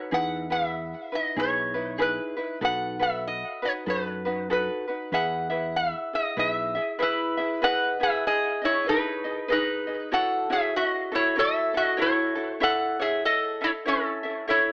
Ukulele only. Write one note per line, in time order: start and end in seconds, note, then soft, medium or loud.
0.00 0.11 D#4 soft
0.00 0.12 F#4 soft
0.00 0.12 C#5 medium
0.11 0.50 D#4 medium
0.11 0.49 E4 medium
0.11 0.50 G#4 medium
0.11 0.49 B4 medium
0.50 1.12 E4 medium
0.50 1.13 G#4 soft
0.50 1.12 B4 medium
1.12 1.36 D#4 soft
1.12 1.36 E4 soft
1.12 1.37 B4 soft
1.36 1.75 D#4 medium
1.36 1.74 E4 medium
1.36 1.75 G#4 medium
1.36 1.73 B4 medium
1.74 1.98 D#4 soft
1.74 1.98 E4 soft
1.74 1.98 B4 medium
1.98 2.37 D#4 medium
1.98 2.36 E4 medium
1.98 2.37 G#4 medium
1.98 2.35 B4 medium
2.37 2.60 D#4 soft
2.37 2.62 E4 soft
2.37 2.61 B4 soft
2.61 3.00 D#4 medium
2.61 2.99 F#4 medium
2.61 3.00 A4 medium
2.61 2.98 B4 medium
2.99 3.62 F#4 medium
2.99 3.62 A4 medium
2.99 3.62 B4 medium
3.62 3.86 D#4 soft
3.62 3.86 F#4 soft
3.62 3.86 B4 medium
3.86 4.25 D#4 medium
3.86 4.25 F#4 medium
3.86 4.25 A4 medium
3.86 4.24 B4 medium
4.25 4.49 D#4 soft
4.25 4.49 F#4 soft
4.25 4.50 B4 medium
4.50 4.88 D#4 medium
4.50 4.87 F#4 medium
4.50 4.87 A4 medium
4.50 4.86 B4 medium
4.88 5.12 D#4 soft
4.88 5.13 F#4 soft
4.88 5.11 B4 soft
5.12 5.49 E4 medium
5.12 5.49 G#4 medium
5.12 5.50 B4 medium
5.12 5.48 E5 medium
5.50 6.14 E4 medium
5.50 6.13 G#4 medium
5.50 6.36 B4 medium
5.50 6.38 E5 medium
6.13 6.36 E4 soft
6.13 6.37 G#4 soft
6.37 6.75 E4 medium
6.37 6.75 G#4 medium
6.37 6.75 B4 medium
6.37 6.74 E5 medium
6.75 6.98 E4 soft
6.75 6.99 G#4 soft
6.75 6.99 E5 medium
6.99 7.37 E4 medium
6.99 7.37 G#4 medium
6.99 7.37 B4 medium
6.99 7.36 E5 medium
7.37 7.61 E4 soft
7.37 7.62 G#4 soft
7.37 7.62 E5 medium
7.62 7.99 E4 medium
7.62 7.99 G#4 medium
7.62 8.00 B4 medium
7.62 8.01 D#5 medium
8.00 8.63 E4 medium
8.00 8.62 G#4 medium
8.00 8.61 B4 medium
8.62 8.86 E4 soft
8.62 8.86 G#4 soft
8.62 8.86 D#5 medium
8.86 9.24 G#4 medium
8.86 9.24 B4 medium
8.86 9.23 D#5 medium
9.24 9.48 G#4 soft
9.24 9.49 D#5 medium
9.48 9.87 G#4 medium
9.48 9.87 B4 medium
9.48 9.86 D#5 medium
9.87 10.12 G#4 soft
9.87 10.11 D#5 medium
10.12 10.49 E4 medium
10.12 10.49 F#4 medium
10.12 10.50 A4 medium
10.12 10.49 C#5 medium
10.50 11.13 E4 medium
10.50 11.12 F#4 medium
10.50 11.35 C#5 medium
11.12 11.36 E4 soft
11.12 11.35 F#4 soft
11.12 11.36 A4 medium
11.36 11.74 E4 medium
11.36 11.74 F#4 medium
11.36 11.73 A4 medium
11.36 11.74 C#5 medium
11.74 11.97 E4 soft
11.74 11.97 F#4 soft
11.74 11.98 A4 medium
11.97 12.36 E4 medium
11.97 12.36 F#4 medium
11.97 12.34 A4 medium
11.97 12.36 C#5 medium
12.35 12.59 E4 soft
12.35 12.60 F#4 soft
12.35 12.60 A4 medium
12.60 12.98 E4 medium
12.60 12.99 A4 medium
12.60 12.98 C#5 medium
12.60 12.99 E5 medium
12.99 13.63 E4 medium
12.99 13.61 C#5 medium
13.61 13.85 E4 soft
13.61 13.85 A4 soft
13.61 13.85 E5 medium
13.86 14.24 E4 medium
13.86 14.23 A4 medium
13.86 14.23 C#5 medium
13.86 14.22 E5 medium
14.23 14.47 E4 soft
14.23 14.47 A4 soft
14.23 14.47 E5 medium
14.48 14.72 E4 medium
14.48 14.72 A4 medium
14.48 14.72 C#5 medium
14.48 14.72 E5 medium